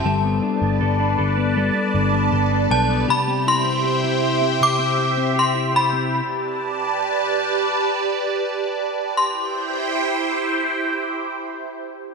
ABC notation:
X:1
M:4/4
L:1/16
Q:1/4=79
K:C
V:1 name="Synth bell"
a6 z8 a2 | b2 c'6 d'4 c'2 b2- | b6 z8 z2 | c'16 |]
V:2 name="Analog synth pad"
[GBda]16 | [Gceg]16 | [GBda]16 | [EGcg]16 |]
V:3 name="Clean electric guitar"
[G,A] B, D B, A D A B, [G,A] B, D B, A D A B, | [C,G] C E C G E G C [C,G] C E C G E G C | z16 | z16 |]
V:4 name="Picked electric bass" clef=bass
G,,,2 z G,,, G,,,2 G,,,3 z G,,,2 G,,,2 B,,,2 | z16 | z16 | z16 |]